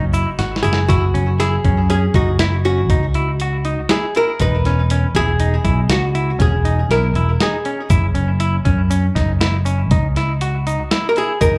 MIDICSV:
0, 0, Header, 1, 5, 480
1, 0, Start_track
1, 0, Tempo, 500835
1, 852, Time_signature, 7, 2, 24, 8
1, 11098, End_track
2, 0, Start_track
2, 0, Title_t, "Hollow-body jazz guitar"
2, 0, Program_c, 0, 26
2, 0, Note_on_c, 0, 66, 65
2, 577, Note_off_c, 0, 66, 0
2, 600, Note_on_c, 0, 68, 74
2, 848, Note_on_c, 0, 66, 72
2, 853, Note_off_c, 0, 68, 0
2, 1339, Note_on_c, 0, 68, 76
2, 1344, Note_off_c, 0, 66, 0
2, 1812, Note_off_c, 0, 68, 0
2, 1823, Note_on_c, 0, 68, 73
2, 2065, Note_off_c, 0, 68, 0
2, 2066, Note_on_c, 0, 66, 69
2, 2292, Note_off_c, 0, 66, 0
2, 2296, Note_on_c, 0, 64, 69
2, 2360, Note_off_c, 0, 64, 0
2, 2542, Note_on_c, 0, 66, 71
2, 3746, Note_on_c, 0, 68, 73
2, 3774, Note_off_c, 0, 66, 0
2, 3964, Note_off_c, 0, 68, 0
2, 3997, Note_on_c, 0, 70, 91
2, 4228, Note_off_c, 0, 70, 0
2, 4232, Note_on_c, 0, 71, 92
2, 4944, Note_off_c, 0, 71, 0
2, 4948, Note_on_c, 0, 68, 96
2, 5675, Note_off_c, 0, 68, 0
2, 5679, Note_on_c, 0, 66, 73
2, 6145, Note_off_c, 0, 66, 0
2, 6149, Note_on_c, 0, 68, 79
2, 6621, Note_off_c, 0, 68, 0
2, 6625, Note_on_c, 0, 70, 76
2, 7115, Note_off_c, 0, 70, 0
2, 7119, Note_on_c, 0, 68, 63
2, 7443, Note_off_c, 0, 68, 0
2, 10628, Note_on_c, 0, 70, 73
2, 10692, Note_off_c, 0, 70, 0
2, 10715, Note_on_c, 0, 68, 91
2, 10935, Note_off_c, 0, 68, 0
2, 10939, Note_on_c, 0, 70, 88
2, 11098, Note_off_c, 0, 70, 0
2, 11098, End_track
3, 0, Start_track
3, 0, Title_t, "Clean electric guitar"
3, 0, Program_c, 1, 27
3, 130, Note_on_c, 1, 64, 65
3, 277, Note_off_c, 1, 64, 0
3, 371, Note_on_c, 1, 66, 67
3, 518, Note_off_c, 1, 66, 0
3, 615, Note_on_c, 1, 64, 69
3, 761, Note_off_c, 1, 64, 0
3, 856, Note_on_c, 1, 64, 77
3, 1002, Note_off_c, 1, 64, 0
3, 1095, Note_on_c, 1, 61, 67
3, 1241, Note_off_c, 1, 61, 0
3, 1342, Note_on_c, 1, 64, 78
3, 1486, Note_off_c, 1, 64, 0
3, 1580, Note_on_c, 1, 61, 64
3, 1725, Note_off_c, 1, 61, 0
3, 1820, Note_on_c, 1, 61, 75
3, 1965, Note_off_c, 1, 61, 0
3, 2060, Note_on_c, 1, 63, 62
3, 2205, Note_off_c, 1, 63, 0
3, 2304, Note_on_c, 1, 64, 77
3, 2447, Note_off_c, 1, 64, 0
3, 2540, Note_on_c, 1, 61, 61
3, 2685, Note_off_c, 1, 61, 0
3, 2783, Note_on_c, 1, 63, 68
3, 2927, Note_off_c, 1, 63, 0
3, 3020, Note_on_c, 1, 64, 65
3, 3165, Note_off_c, 1, 64, 0
3, 3273, Note_on_c, 1, 66, 69
3, 3414, Note_off_c, 1, 66, 0
3, 3498, Note_on_c, 1, 63, 70
3, 3644, Note_off_c, 1, 63, 0
3, 3737, Note_on_c, 1, 64, 70
3, 3883, Note_off_c, 1, 64, 0
3, 3991, Note_on_c, 1, 64, 65
3, 4133, Note_off_c, 1, 64, 0
3, 4226, Note_on_c, 1, 63, 77
3, 4370, Note_off_c, 1, 63, 0
3, 4469, Note_on_c, 1, 61, 66
3, 4612, Note_off_c, 1, 61, 0
3, 4708, Note_on_c, 1, 61, 69
3, 4851, Note_off_c, 1, 61, 0
3, 4947, Note_on_c, 1, 64, 73
3, 5090, Note_off_c, 1, 64, 0
3, 5174, Note_on_c, 1, 63, 67
3, 5322, Note_off_c, 1, 63, 0
3, 5409, Note_on_c, 1, 64, 61
3, 5558, Note_off_c, 1, 64, 0
3, 5655, Note_on_c, 1, 66, 69
3, 5802, Note_off_c, 1, 66, 0
3, 5893, Note_on_c, 1, 64, 68
3, 6041, Note_off_c, 1, 64, 0
3, 6123, Note_on_c, 1, 61, 65
3, 6274, Note_off_c, 1, 61, 0
3, 6372, Note_on_c, 1, 63, 68
3, 6520, Note_off_c, 1, 63, 0
3, 6629, Note_on_c, 1, 64, 72
3, 6772, Note_off_c, 1, 64, 0
3, 6860, Note_on_c, 1, 64, 66
3, 7006, Note_off_c, 1, 64, 0
3, 7103, Note_on_c, 1, 63, 78
3, 7248, Note_off_c, 1, 63, 0
3, 7337, Note_on_c, 1, 61, 74
3, 7484, Note_off_c, 1, 61, 0
3, 7573, Note_on_c, 1, 64, 84
3, 7721, Note_off_c, 1, 64, 0
3, 7807, Note_on_c, 1, 61, 63
3, 7957, Note_off_c, 1, 61, 0
3, 8052, Note_on_c, 1, 64, 77
3, 8200, Note_off_c, 1, 64, 0
3, 8290, Note_on_c, 1, 61, 69
3, 8439, Note_off_c, 1, 61, 0
3, 8533, Note_on_c, 1, 61, 69
3, 8681, Note_off_c, 1, 61, 0
3, 8772, Note_on_c, 1, 63, 64
3, 8920, Note_off_c, 1, 63, 0
3, 9015, Note_on_c, 1, 64, 72
3, 9162, Note_off_c, 1, 64, 0
3, 9252, Note_on_c, 1, 61, 63
3, 9400, Note_off_c, 1, 61, 0
3, 9499, Note_on_c, 1, 63, 72
3, 9645, Note_off_c, 1, 63, 0
3, 9747, Note_on_c, 1, 64, 70
3, 9890, Note_off_c, 1, 64, 0
3, 9982, Note_on_c, 1, 66, 71
3, 10127, Note_off_c, 1, 66, 0
3, 10224, Note_on_c, 1, 63, 67
3, 10368, Note_off_c, 1, 63, 0
3, 10457, Note_on_c, 1, 64, 72
3, 10604, Note_off_c, 1, 64, 0
3, 10704, Note_on_c, 1, 64, 68
3, 10849, Note_off_c, 1, 64, 0
3, 10933, Note_on_c, 1, 63, 78
3, 11081, Note_off_c, 1, 63, 0
3, 11098, End_track
4, 0, Start_track
4, 0, Title_t, "Picked electric bass"
4, 0, Program_c, 2, 34
4, 0, Note_on_c, 2, 30, 66
4, 230, Note_off_c, 2, 30, 0
4, 372, Note_on_c, 2, 32, 75
4, 588, Note_off_c, 2, 32, 0
4, 612, Note_on_c, 2, 30, 64
4, 828, Note_off_c, 2, 30, 0
4, 854, Note_on_c, 2, 30, 83
4, 1058, Note_off_c, 2, 30, 0
4, 1097, Note_on_c, 2, 30, 77
4, 1505, Note_off_c, 2, 30, 0
4, 1577, Note_on_c, 2, 42, 66
4, 1985, Note_off_c, 2, 42, 0
4, 2053, Note_on_c, 2, 30, 77
4, 2775, Note_off_c, 2, 30, 0
4, 2775, Note_on_c, 2, 37, 77
4, 3595, Note_off_c, 2, 37, 0
4, 4218, Note_on_c, 2, 28, 85
4, 4832, Note_off_c, 2, 28, 0
4, 4929, Note_on_c, 2, 28, 70
4, 5342, Note_off_c, 2, 28, 0
4, 5409, Note_on_c, 2, 35, 73
4, 5616, Note_off_c, 2, 35, 0
4, 5648, Note_on_c, 2, 37, 83
4, 6061, Note_off_c, 2, 37, 0
4, 6131, Note_on_c, 2, 28, 72
4, 6543, Note_off_c, 2, 28, 0
4, 6604, Note_on_c, 2, 35, 67
4, 6814, Note_off_c, 2, 35, 0
4, 6841, Note_on_c, 2, 28, 89
4, 7052, Note_off_c, 2, 28, 0
4, 7571, Note_on_c, 2, 30, 82
4, 7778, Note_off_c, 2, 30, 0
4, 7802, Note_on_c, 2, 30, 73
4, 8218, Note_off_c, 2, 30, 0
4, 8298, Note_on_c, 2, 42, 67
4, 8707, Note_off_c, 2, 42, 0
4, 8775, Note_on_c, 2, 30, 73
4, 9494, Note_off_c, 2, 30, 0
4, 9494, Note_on_c, 2, 37, 71
4, 10315, Note_off_c, 2, 37, 0
4, 10938, Note_on_c, 2, 30, 80
4, 11098, Note_off_c, 2, 30, 0
4, 11098, End_track
5, 0, Start_track
5, 0, Title_t, "Drums"
5, 129, Note_on_c, 9, 82, 40
5, 135, Note_on_c, 9, 42, 56
5, 225, Note_off_c, 9, 82, 0
5, 231, Note_off_c, 9, 42, 0
5, 371, Note_on_c, 9, 38, 53
5, 371, Note_on_c, 9, 42, 74
5, 467, Note_off_c, 9, 38, 0
5, 467, Note_off_c, 9, 42, 0
5, 538, Note_on_c, 9, 38, 66
5, 616, Note_on_c, 9, 42, 53
5, 616, Note_on_c, 9, 82, 15
5, 634, Note_off_c, 9, 38, 0
5, 698, Note_on_c, 9, 38, 86
5, 711, Note_off_c, 9, 82, 0
5, 712, Note_off_c, 9, 42, 0
5, 793, Note_off_c, 9, 38, 0
5, 858, Note_on_c, 9, 36, 90
5, 860, Note_on_c, 9, 42, 72
5, 954, Note_off_c, 9, 36, 0
5, 956, Note_off_c, 9, 42, 0
5, 1102, Note_on_c, 9, 42, 52
5, 1198, Note_off_c, 9, 42, 0
5, 1342, Note_on_c, 9, 38, 33
5, 1342, Note_on_c, 9, 42, 85
5, 1438, Note_off_c, 9, 38, 0
5, 1438, Note_off_c, 9, 42, 0
5, 1576, Note_on_c, 9, 36, 63
5, 1577, Note_on_c, 9, 42, 48
5, 1672, Note_off_c, 9, 36, 0
5, 1673, Note_off_c, 9, 42, 0
5, 1818, Note_on_c, 9, 42, 78
5, 1914, Note_off_c, 9, 42, 0
5, 2053, Note_on_c, 9, 42, 49
5, 2056, Note_on_c, 9, 36, 71
5, 2149, Note_off_c, 9, 42, 0
5, 2151, Note_off_c, 9, 36, 0
5, 2293, Note_on_c, 9, 38, 96
5, 2293, Note_on_c, 9, 42, 77
5, 2389, Note_off_c, 9, 38, 0
5, 2389, Note_off_c, 9, 42, 0
5, 2539, Note_on_c, 9, 42, 47
5, 2635, Note_off_c, 9, 42, 0
5, 2776, Note_on_c, 9, 36, 91
5, 2776, Note_on_c, 9, 42, 63
5, 2872, Note_off_c, 9, 36, 0
5, 2872, Note_off_c, 9, 42, 0
5, 3013, Note_on_c, 9, 42, 54
5, 3109, Note_off_c, 9, 42, 0
5, 3256, Note_on_c, 9, 42, 69
5, 3352, Note_off_c, 9, 42, 0
5, 3495, Note_on_c, 9, 42, 54
5, 3591, Note_off_c, 9, 42, 0
5, 3731, Note_on_c, 9, 38, 98
5, 3731, Note_on_c, 9, 42, 72
5, 3827, Note_off_c, 9, 38, 0
5, 3827, Note_off_c, 9, 42, 0
5, 3975, Note_on_c, 9, 42, 52
5, 4071, Note_off_c, 9, 42, 0
5, 4212, Note_on_c, 9, 42, 69
5, 4218, Note_on_c, 9, 36, 87
5, 4308, Note_off_c, 9, 42, 0
5, 4314, Note_off_c, 9, 36, 0
5, 4460, Note_on_c, 9, 38, 30
5, 4460, Note_on_c, 9, 42, 50
5, 4556, Note_off_c, 9, 38, 0
5, 4556, Note_off_c, 9, 42, 0
5, 4697, Note_on_c, 9, 42, 82
5, 4793, Note_off_c, 9, 42, 0
5, 4933, Note_on_c, 9, 38, 28
5, 4933, Note_on_c, 9, 42, 60
5, 4937, Note_on_c, 9, 36, 63
5, 5029, Note_off_c, 9, 38, 0
5, 5029, Note_off_c, 9, 42, 0
5, 5033, Note_off_c, 9, 36, 0
5, 5172, Note_on_c, 9, 42, 82
5, 5267, Note_off_c, 9, 42, 0
5, 5411, Note_on_c, 9, 42, 57
5, 5416, Note_on_c, 9, 36, 59
5, 5507, Note_off_c, 9, 42, 0
5, 5512, Note_off_c, 9, 36, 0
5, 5650, Note_on_c, 9, 38, 103
5, 5650, Note_on_c, 9, 42, 85
5, 5746, Note_off_c, 9, 38, 0
5, 5746, Note_off_c, 9, 42, 0
5, 5894, Note_on_c, 9, 42, 51
5, 5990, Note_off_c, 9, 42, 0
5, 6131, Note_on_c, 9, 42, 71
5, 6136, Note_on_c, 9, 36, 90
5, 6227, Note_off_c, 9, 42, 0
5, 6232, Note_off_c, 9, 36, 0
5, 6376, Note_on_c, 9, 42, 62
5, 6472, Note_off_c, 9, 42, 0
5, 6619, Note_on_c, 9, 38, 32
5, 6619, Note_on_c, 9, 42, 69
5, 6715, Note_off_c, 9, 38, 0
5, 6715, Note_off_c, 9, 42, 0
5, 6856, Note_on_c, 9, 42, 50
5, 6952, Note_off_c, 9, 42, 0
5, 7096, Note_on_c, 9, 38, 92
5, 7096, Note_on_c, 9, 42, 70
5, 7192, Note_off_c, 9, 38, 0
5, 7192, Note_off_c, 9, 42, 0
5, 7333, Note_on_c, 9, 42, 51
5, 7429, Note_off_c, 9, 42, 0
5, 7570, Note_on_c, 9, 42, 66
5, 7574, Note_on_c, 9, 82, 58
5, 7575, Note_on_c, 9, 36, 99
5, 7666, Note_off_c, 9, 42, 0
5, 7670, Note_off_c, 9, 36, 0
5, 7670, Note_off_c, 9, 82, 0
5, 7812, Note_on_c, 9, 42, 53
5, 7908, Note_off_c, 9, 42, 0
5, 8050, Note_on_c, 9, 42, 73
5, 8146, Note_off_c, 9, 42, 0
5, 8293, Note_on_c, 9, 42, 53
5, 8298, Note_on_c, 9, 36, 62
5, 8389, Note_off_c, 9, 42, 0
5, 8394, Note_off_c, 9, 36, 0
5, 8537, Note_on_c, 9, 42, 82
5, 8539, Note_on_c, 9, 82, 54
5, 8633, Note_off_c, 9, 42, 0
5, 8635, Note_off_c, 9, 82, 0
5, 8780, Note_on_c, 9, 38, 28
5, 8780, Note_on_c, 9, 42, 54
5, 8781, Note_on_c, 9, 36, 63
5, 8876, Note_off_c, 9, 38, 0
5, 8876, Note_off_c, 9, 42, 0
5, 8877, Note_off_c, 9, 36, 0
5, 9015, Note_on_c, 9, 82, 18
5, 9021, Note_on_c, 9, 38, 102
5, 9021, Note_on_c, 9, 42, 82
5, 9110, Note_off_c, 9, 82, 0
5, 9116, Note_off_c, 9, 38, 0
5, 9116, Note_off_c, 9, 42, 0
5, 9255, Note_on_c, 9, 82, 40
5, 9258, Note_on_c, 9, 42, 55
5, 9351, Note_off_c, 9, 82, 0
5, 9354, Note_off_c, 9, 42, 0
5, 9496, Note_on_c, 9, 42, 82
5, 9500, Note_on_c, 9, 36, 92
5, 9592, Note_off_c, 9, 42, 0
5, 9596, Note_off_c, 9, 36, 0
5, 9741, Note_on_c, 9, 38, 33
5, 9741, Note_on_c, 9, 42, 65
5, 9836, Note_off_c, 9, 38, 0
5, 9836, Note_off_c, 9, 42, 0
5, 9978, Note_on_c, 9, 42, 88
5, 9982, Note_on_c, 9, 82, 17
5, 10074, Note_off_c, 9, 42, 0
5, 10078, Note_off_c, 9, 82, 0
5, 10224, Note_on_c, 9, 42, 59
5, 10232, Note_on_c, 9, 82, 40
5, 10319, Note_off_c, 9, 42, 0
5, 10328, Note_off_c, 9, 82, 0
5, 10460, Note_on_c, 9, 38, 97
5, 10460, Note_on_c, 9, 42, 70
5, 10464, Note_on_c, 9, 82, 15
5, 10555, Note_off_c, 9, 38, 0
5, 10555, Note_off_c, 9, 42, 0
5, 10560, Note_off_c, 9, 82, 0
5, 10695, Note_on_c, 9, 42, 50
5, 10791, Note_off_c, 9, 42, 0
5, 10935, Note_on_c, 9, 42, 73
5, 10937, Note_on_c, 9, 36, 98
5, 10941, Note_on_c, 9, 82, 57
5, 11031, Note_off_c, 9, 42, 0
5, 11033, Note_off_c, 9, 36, 0
5, 11037, Note_off_c, 9, 82, 0
5, 11098, End_track
0, 0, End_of_file